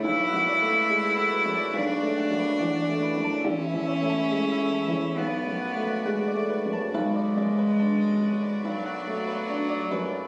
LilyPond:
<<
  \new Staff \with { instrumentName = "Synth pluck" } { \time 4/4 \key b \dorian \tempo 4 = 70 b'16 fis''16 d''16 b'16 r16 fis''16 b'16 d''16 b'16 r16 fis''16 b'16 fis''16 d''16 b'16 a''16 | a'16 e''16 cis''16 a'16 r16 e''16 a'16 cis''16 b'16 r16 fis''16 b'16 fis''16 d''16 b'16 a''16 | b'16 d''16 d''16 b'16 a''16 r16 b'16 d''16 b'16 fis''16 r16 b'16 r16 d''16 b'16 r16 | }
  \new Staff \with { instrumentName = "String section" } { \time 4/4 \key b \dorian << { <fis' d''>1 | <e' e''>2 <fis' d''>2 | <fis' d''>1 | } \\ { a1~ | a2 a2 | b1 | } >> }
  \new Staff \with { instrumentName = "Cello" } { \time 4/4 \key b \dorian e'2 d'2 | cis'2 b4. r8 | gis2 fis2 | }
  \new Staff \with { instrumentName = "Upright piano" } { \clef bass \time 4/4 \key b \dorian \tuplet 3/2 { b,,8 fis,8 a8 gis8 a8 fis,8 b,,8 a8 fis,8 e,8 a8 fis,8 } | \tuplet 3/2 { a,,8 e,8 a8 gis8 a8 e,8 b,,8 fis,8 a8 gis8 a8 fis,8 } | b,,8 fis,8 d'8 fis,8 b,,8 a8 d'8 fis,8 | }
>>